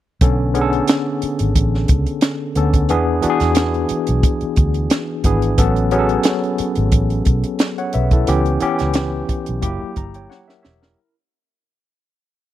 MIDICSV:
0, 0, Header, 1, 5, 480
1, 0, Start_track
1, 0, Tempo, 673401
1, 152, Time_signature, 4, 2, 24, 8
1, 8935, End_track
2, 0, Start_track
2, 0, Title_t, "Tine electric piano"
2, 0, Program_c, 0, 4
2, 155, Note_on_c, 0, 50, 66
2, 157, Note_on_c, 0, 59, 60
2, 158, Note_on_c, 0, 61, 68
2, 162, Note_on_c, 0, 69, 68
2, 297, Control_c, 0, 64, 127
2, 345, Note_off_c, 0, 50, 0
2, 346, Note_off_c, 0, 59, 0
2, 346, Note_off_c, 0, 61, 0
2, 348, Note_off_c, 0, 69, 0
2, 382, Note_on_c, 0, 50, 69
2, 386, Note_on_c, 0, 59, 68
2, 391, Note_on_c, 0, 61, 69
2, 391, Note_on_c, 0, 68, 62
2, 438, Note_on_c, 0, 69, 82
2, 441, Note_off_c, 0, 68, 0
2, 1138, Note_off_c, 0, 50, 0
2, 1140, Note_off_c, 0, 59, 0
2, 1142, Note_off_c, 0, 61, 0
2, 1165, Note_off_c, 0, 69, 0
2, 1824, Note_on_c, 0, 50, 61
2, 1824, Note_on_c, 0, 59, 56
2, 1828, Note_on_c, 0, 61, 56
2, 1833, Note_on_c, 0, 69, 67
2, 2015, Note_off_c, 0, 50, 0
2, 2015, Note_off_c, 0, 59, 0
2, 2017, Note_off_c, 0, 61, 0
2, 2020, Note_off_c, 0, 69, 0
2, 2062, Note_on_c, 0, 52, 63
2, 2066, Note_on_c, 0, 59, 72
2, 2068, Note_on_c, 0, 62, 71
2, 2072, Control_c, 0, 64, 0
2, 2072, Note_on_c, 0, 68, 81
2, 2208, Control_c, 0, 64, 127
2, 2254, Note_off_c, 0, 52, 0
2, 2255, Note_off_c, 0, 59, 0
2, 2257, Note_off_c, 0, 62, 0
2, 2259, Note_off_c, 0, 68, 0
2, 2293, Note_on_c, 0, 52, 71
2, 2296, Note_on_c, 0, 59, 66
2, 2300, Note_on_c, 0, 62, 67
2, 2303, Note_on_c, 0, 66, 64
2, 2349, Note_on_c, 0, 68, 86
2, 2352, Note_off_c, 0, 66, 0
2, 3050, Note_off_c, 0, 52, 0
2, 3051, Note_off_c, 0, 59, 0
2, 3053, Note_off_c, 0, 62, 0
2, 3078, Note_off_c, 0, 68, 0
2, 3740, Note_on_c, 0, 52, 57
2, 3740, Note_on_c, 0, 59, 60
2, 3744, Note_on_c, 0, 62, 51
2, 3750, Note_on_c, 0, 68, 67
2, 3931, Note_off_c, 0, 52, 0
2, 3931, Note_off_c, 0, 59, 0
2, 3932, Note_off_c, 0, 62, 0
2, 3935, Note_off_c, 0, 68, 0
2, 3973, Note_on_c, 0, 54, 67
2, 3980, Note_on_c, 0, 59, 68
2, 3981, Note_on_c, 0, 61, 71
2, 3982, Note_on_c, 0, 69, 84
2, 3986, Control_c, 0, 64, 0
2, 4118, Control_c, 0, 64, 127
2, 4167, Note_off_c, 0, 54, 0
2, 4171, Note_off_c, 0, 59, 0
2, 4171, Note_off_c, 0, 61, 0
2, 4172, Note_off_c, 0, 69, 0
2, 4216, Note_on_c, 0, 54, 76
2, 4218, Note_on_c, 0, 59, 68
2, 4221, Note_on_c, 0, 61, 74
2, 4223, Note_on_c, 0, 68, 67
2, 4268, Note_on_c, 0, 69, 74
2, 4270, Note_off_c, 0, 68, 0
2, 4971, Note_off_c, 0, 54, 0
2, 4972, Note_off_c, 0, 59, 0
2, 4974, Note_off_c, 0, 61, 0
2, 4998, Note_off_c, 0, 69, 0
2, 5547, Note_on_c, 0, 78, 59
2, 5550, Note_on_c, 0, 73, 56
2, 5652, Note_off_c, 0, 78, 0
2, 5654, Note_off_c, 0, 73, 0
2, 5659, Note_on_c, 0, 76, 54
2, 5662, Note_on_c, 0, 71, 45
2, 5782, Note_off_c, 0, 76, 0
2, 5783, Note_off_c, 0, 71, 0
2, 5793, Note_on_c, 0, 69, 55
2, 5795, Note_on_c, 0, 64, 51
2, 5899, Note_on_c, 0, 52, 72
2, 5902, Note_on_c, 0, 59, 62
2, 5905, Note_on_c, 0, 61, 66
2, 5906, Note_on_c, 0, 67, 90
2, 5908, Control_c, 0, 64, 0
2, 6019, Note_off_c, 0, 69, 0
2, 6020, Note_off_c, 0, 64, 0
2, 6053, Control_c, 0, 64, 127
2, 6092, Note_off_c, 0, 52, 0
2, 6093, Note_off_c, 0, 59, 0
2, 6094, Note_off_c, 0, 61, 0
2, 6095, Note_off_c, 0, 67, 0
2, 6134, Note_on_c, 0, 52, 82
2, 6139, Note_on_c, 0, 59, 69
2, 6143, Note_on_c, 0, 61, 69
2, 6149, Note_on_c, 0, 67, 80
2, 6853, Note_off_c, 0, 67, 0
2, 6853, Note_on_c, 0, 54, 64
2, 6854, Note_on_c, 0, 58, 65
2, 6860, Note_off_c, 0, 52, 0
2, 6860, Note_on_c, 0, 64, 58
2, 6862, Note_off_c, 0, 59, 0
2, 6862, Note_on_c, 0, 67, 73
2, 6864, Note_off_c, 0, 61, 0
2, 6871, Control_c, 0, 64, 0
2, 6998, Control_c, 0, 64, 127
2, 7102, Note_off_c, 0, 64, 0
2, 7103, Note_off_c, 0, 67, 0
2, 7110, Note_on_c, 0, 82, 60
2, 7237, Note_on_c, 0, 79, 52
2, 7241, Note_on_c, 0, 73, 50
2, 7331, Note_off_c, 0, 82, 0
2, 7336, Note_off_c, 0, 73, 0
2, 7340, Note_on_c, 0, 78, 64
2, 7341, Note_off_c, 0, 79, 0
2, 7344, Note_on_c, 0, 73, 47
2, 7444, Note_off_c, 0, 54, 0
2, 7444, Note_off_c, 0, 58, 0
2, 7467, Note_off_c, 0, 78, 0
2, 7468, Note_off_c, 0, 73, 0
2, 7468, Note_on_c, 0, 76, 60
2, 7473, Note_on_c, 0, 70, 52
2, 7566, Note_off_c, 0, 76, 0
2, 7575, Note_on_c, 0, 76, 56
2, 7576, Note_on_c, 0, 73, 49
2, 7579, Note_off_c, 0, 70, 0
2, 7581, Note_on_c, 0, 67, 44
2, 7705, Note_off_c, 0, 73, 0
2, 7707, Note_off_c, 0, 67, 0
2, 7710, Note_on_c, 0, 70, 53
2, 7717, Note_on_c, 0, 64, 46
2, 7804, Note_off_c, 0, 76, 0
2, 7837, Control_c, 0, 64, 0
2, 7942, Note_off_c, 0, 70, 0
2, 7946, Note_off_c, 0, 64, 0
2, 8935, End_track
3, 0, Start_track
3, 0, Title_t, "Fingered electric bass"
3, 0, Program_c, 1, 33
3, 152, Note_on_c, 1, 35, 76
3, 572, Note_off_c, 1, 35, 0
3, 1002, Note_on_c, 1, 32, 63
3, 1096, Note_off_c, 1, 32, 0
3, 1112, Note_on_c, 1, 33, 82
3, 1320, Note_off_c, 1, 33, 0
3, 1349, Note_on_c, 1, 37, 77
3, 1461, Note_off_c, 1, 37, 0
3, 1825, Note_on_c, 1, 38, 77
3, 2071, Note_off_c, 1, 38, 0
3, 2071, Note_on_c, 1, 40, 102
3, 2277, Note_off_c, 1, 40, 0
3, 2431, Note_on_c, 1, 40, 65
3, 2737, Note_off_c, 1, 40, 0
3, 2914, Note_on_c, 1, 35, 65
3, 3008, Note_off_c, 1, 35, 0
3, 3263, Note_on_c, 1, 38, 72
3, 3471, Note_off_c, 1, 38, 0
3, 3739, Note_on_c, 1, 32, 74
3, 3949, Note_off_c, 1, 32, 0
3, 3979, Note_on_c, 1, 33, 103
3, 4400, Note_off_c, 1, 33, 0
3, 4829, Note_on_c, 1, 32, 75
3, 4925, Note_off_c, 1, 32, 0
3, 4935, Note_on_c, 1, 33, 74
3, 5147, Note_off_c, 1, 33, 0
3, 5182, Note_on_c, 1, 35, 72
3, 5294, Note_off_c, 1, 35, 0
3, 5668, Note_on_c, 1, 35, 79
3, 5875, Note_off_c, 1, 35, 0
3, 5904, Note_on_c, 1, 37, 91
3, 6113, Note_off_c, 1, 37, 0
3, 6281, Note_on_c, 1, 37, 67
3, 6585, Note_off_c, 1, 37, 0
3, 6764, Note_on_c, 1, 35, 73
3, 6856, Note_off_c, 1, 35, 0
3, 6864, Note_on_c, 1, 30, 82
3, 6978, Note_off_c, 1, 30, 0
3, 7107, Note_on_c, 1, 31, 71
3, 7318, Note_off_c, 1, 31, 0
3, 7597, Note_on_c, 1, 28, 67
3, 7804, Note_off_c, 1, 28, 0
3, 8935, End_track
4, 0, Start_track
4, 0, Title_t, "Muted fingered electric bass strokes"
4, 877, Note_on_c, 9, 29, 37
4, 948, Note_off_c, 9, 29, 0
4, 2310, Note_on_c, 9, 29, 42
4, 2382, Note_off_c, 9, 29, 0
4, 2785, Note_on_c, 9, 29, 38
4, 2856, Note_off_c, 9, 29, 0
4, 3153, Note_on_c, 9, 29, 47
4, 3224, Note_off_c, 9, 29, 0
4, 4702, Note_on_c, 9, 29, 43
4, 4773, Note_off_c, 9, 29, 0
4, 6623, Note_on_c, 9, 29, 41
4, 6694, Note_off_c, 9, 29, 0
4, 7008, Note_on_c, 9, 29, 44
4, 7079, Note_off_c, 9, 29, 0
4, 8935, End_track
5, 0, Start_track
5, 0, Title_t, "Drums"
5, 150, Note_on_c, 9, 42, 70
5, 152, Note_on_c, 9, 36, 97
5, 221, Note_off_c, 9, 42, 0
5, 223, Note_off_c, 9, 36, 0
5, 391, Note_on_c, 9, 42, 60
5, 463, Note_off_c, 9, 42, 0
5, 519, Note_on_c, 9, 42, 37
5, 590, Note_off_c, 9, 42, 0
5, 624, Note_on_c, 9, 42, 82
5, 638, Note_on_c, 9, 38, 111
5, 695, Note_off_c, 9, 42, 0
5, 709, Note_off_c, 9, 38, 0
5, 869, Note_on_c, 9, 42, 67
5, 940, Note_off_c, 9, 42, 0
5, 991, Note_on_c, 9, 42, 57
5, 1062, Note_off_c, 9, 42, 0
5, 1108, Note_on_c, 9, 36, 74
5, 1109, Note_on_c, 9, 42, 73
5, 1179, Note_off_c, 9, 36, 0
5, 1180, Note_off_c, 9, 42, 0
5, 1244, Note_on_c, 9, 38, 30
5, 1315, Note_off_c, 9, 38, 0
5, 1342, Note_on_c, 9, 42, 69
5, 1348, Note_on_c, 9, 36, 81
5, 1413, Note_off_c, 9, 42, 0
5, 1420, Note_off_c, 9, 36, 0
5, 1472, Note_on_c, 9, 42, 46
5, 1543, Note_off_c, 9, 42, 0
5, 1577, Note_on_c, 9, 42, 88
5, 1585, Note_on_c, 9, 38, 99
5, 1648, Note_off_c, 9, 42, 0
5, 1656, Note_off_c, 9, 38, 0
5, 1821, Note_on_c, 9, 42, 65
5, 1892, Note_off_c, 9, 42, 0
5, 1950, Note_on_c, 9, 36, 68
5, 1950, Note_on_c, 9, 42, 40
5, 2021, Note_off_c, 9, 36, 0
5, 2021, Note_off_c, 9, 42, 0
5, 2059, Note_on_c, 9, 42, 72
5, 2130, Note_off_c, 9, 42, 0
5, 2298, Note_on_c, 9, 42, 59
5, 2370, Note_off_c, 9, 42, 0
5, 2423, Note_on_c, 9, 42, 39
5, 2429, Note_on_c, 9, 38, 30
5, 2494, Note_off_c, 9, 42, 0
5, 2500, Note_off_c, 9, 38, 0
5, 2529, Note_on_c, 9, 42, 87
5, 2543, Note_on_c, 9, 38, 105
5, 2600, Note_off_c, 9, 42, 0
5, 2614, Note_off_c, 9, 38, 0
5, 2666, Note_on_c, 9, 42, 28
5, 2738, Note_off_c, 9, 42, 0
5, 2771, Note_on_c, 9, 42, 70
5, 2843, Note_off_c, 9, 42, 0
5, 2899, Note_on_c, 9, 42, 56
5, 2971, Note_off_c, 9, 42, 0
5, 3017, Note_on_c, 9, 42, 76
5, 3018, Note_on_c, 9, 36, 89
5, 3088, Note_off_c, 9, 42, 0
5, 3089, Note_off_c, 9, 36, 0
5, 3142, Note_on_c, 9, 42, 28
5, 3213, Note_off_c, 9, 42, 0
5, 3253, Note_on_c, 9, 42, 65
5, 3260, Note_on_c, 9, 36, 89
5, 3324, Note_off_c, 9, 42, 0
5, 3331, Note_off_c, 9, 36, 0
5, 3381, Note_on_c, 9, 42, 41
5, 3452, Note_off_c, 9, 42, 0
5, 3494, Note_on_c, 9, 42, 83
5, 3502, Note_on_c, 9, 38, 98
5, 3565, Note_off_c, 9, 42, 0
5, 3573, Note_off_c, 9, 38, 0
5, 3734, Note_on_c, 9, 42, 66
5, 3737, Note_on_c, 9, 36, 75
5, 3805, Note_off_c, 9, 42, 0
5, 3808, Note_off_c, 9, 36, 0
5, 3864, Note_on_c, 9, 42, 42
5, 3936, Note_off_c, 9, 42, 0
5, 3977, Note_on_c, 9, 42, 74
5, 3978, Note_on_c, 9, 36, 82
5, 4048, Note_off_c, 9, 42, 0
5, 4049, Note_off_c, 9, 36, 0
5, 4108, Note_on_c, 9, 42, 32
5, 4179, Note_off_c, 9, 42, 0
5, 4214, Note_on_c, 9, 42, 57
5, 4285, Note_off_c, 9, 42, 0
5, 4341, Note_on_c, 9, 42, 35
5, 4413, Note_off_c, 9, 42, 0
5, 4444, Note_on_c, 9, 42, 85
5, 4457, Note_on_c, 9, 38, 103
5, 4515, Note_off_c, 9, 42, 0
5, 4529, Note_off_c, 9, 38, 0
5, 4586, Note_on_c, 9, 42, 26
5, 4657, Note_off_c, 9, 42, 0
5, 4693, Note_on_c, 9, 42, 72
5, 4764, Note_off_c, 9, 42, 0
5, 4814, Note_on_c, 9, 42, 52
5, 4886, Note_off_c, 9, 42, 0
5, 4930, Note_on_c, 9, 42, 74
5, 4935, Note_on_c, 9, 36, 82
5, 5001, Note_off_c, 9, 42, 0
5, 5006, Note_off_c, 9, 36, 0
5, 5062, Note_on_c, 9, 42, 32
5, 5133, Note_off_c, 9, 42, 0
5, 5170, Note_on_c, 9, 42, 59
5, 5178, Note_on_c, 9, 36, 75
5, 5241, Note_off_c, 9, 42, 0
5, 5250, Note_off_c, 9, 36, 0
5, 5300, Note_on_c, 9, 42, 45
5, 5372, Note_off_c, 9, 42, 0
5, 5409, Note_on_c, 9, 42, 82
5, 5417, Note_on_c, 9, 38, 96
5, 5481, Note_off_c, 9, 42, 0
5, 5489, Note_off_c, 9, 38, 0
5, 5547, Note_on_c, 9, 42, 27
5, 5618, Note_off_c, 9, 42, 0
5, 5650, Note_on_c, 9, 42, 58
5, 5721, Note_off_c, 9, 42, 0
5, 5781, Note_on_c, 9, 42, 41
5, 5783, Note_on_c, 9, 36, 72
5, 5852, Note_off_c, 9, 42, 0
5, 5854, Note_off_c, 9, 36, 0
5, 5896, Note_on_c, 9, 42, 76
5, 5967, Note_off_c, 9, 42, 0
5, 6027, Note_on_c, 9, 42, 30
5, 6099, Note_off_c, 9, 42, 0
5, 6133, Note_on_c, 9, 42, 58
5, 6204, Note_off_c, 9, 42, 0
5, 6263, Note_on_c, 9, 42, 38
5, 6269, Note_on_c, 9, 38, 31
5, 6335, Note_off_c, 9, 42, 0
5, 6341, Note_off_c, 9, 38, 0
5, 6369, Note_on_c, 9, 42, 82
5, 6383, Note_on_c, 9, 38, 105
5, 6441, Note_off_c, 9, 42, 0
5, 6454, Note_off_c, 9, 38, 0
5, 6621, Note_on_c, 9, 42, 72
5, 6622, Note_on_c, 9, 36, 77
5, 6692, Note_off_c, 9, 42, 0
5, 6693, Note_off_c, 9, 36, 0
5, 6745, Note_on_c, 9, 42, 54
5, 6816, Note_off_c, 9, 42, 0
5, 6859, Note_on_c, 9, 42, 80
5, 6861, Note_on_c, 9, 36, 83
5, 6931, Note_off_c, 9, 42, 0
5, 6932, Note_off_c, 9, 36, 0
5, 7100, Note_on_c, 9, 42, 62
5, 7105, Note_on_c, 9, 36, 86
5, 7171, Note_off_c, 9, 42, 0
5, 7176, Note_off_c, 9, 36, 0
5, 7230, Note_on_c, 9, 42, 44
5, 7301, Note_off_c, 9, 42, 0
5, 7350, Note_on_c, 9, 38, 49
5, 7422, Note_off_c, 9, 38, 0
5, 7479, Note_on_c, 9, 38, 43
5, 7550, Note_off_c, 9, 38, 0
5, 7588, Note_on_c, 9, 38, 77
5, 7659, Note_off_c, 9, 38, 0
5, 7717, Note_on_c, 9, 38, 72
5, 7788, Note_off_c, 9, 38, 0
5, 8935, End_track
0, 0, End_of_file